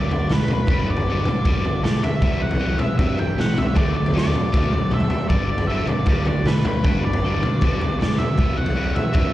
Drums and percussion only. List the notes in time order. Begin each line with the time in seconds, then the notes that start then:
0.11 floor tom
0.29 snare, mid tom
0.48 floor tom, mid tom
0.67 kick, floor tom
0.97 floor tom
1.25 floor tom, mid tom
1.45 kick, floor tom
1.65 floor tom
1.84 snare, mid tom
2.04 floor tom, mid tom
2.22 kick, floor tom
2.51 floor tom
2.79 floor tom, mid tom
2.99 kick, floor tom
3.19 floor tom
3.39 snare, mid tom
3.58 floor tom, mid tom
3.76 kick, floor tom
4.06 floor tom
4.17 snare
4.25 floor tom
4.35 floor tom, mid tom
4.54 kick, floor tom
4.64 mid tom
4.73 floor tom
4.91 mid tom
5.00 floor tom
5.10 floor tom
5.29 kick, floor tom
5.58 floor tom
5.87 floor tom, mid tom
6.06 kick, floor tom
6.25 floor tom
6.46 snare, mid tom
6.65 floor tom, mid tom
6.84 kick, floor tom
7.13 floor tom
7.43 floor tom, mid tom
7.61 kick, floor tom
7.81 floor tom
8.01 snare, mid tom
8.20 floor tom, mid tom
8.38 kick, floor tom
8.66 floor tom
8.96 floor tom, mid tom
9.14 kick, floor tom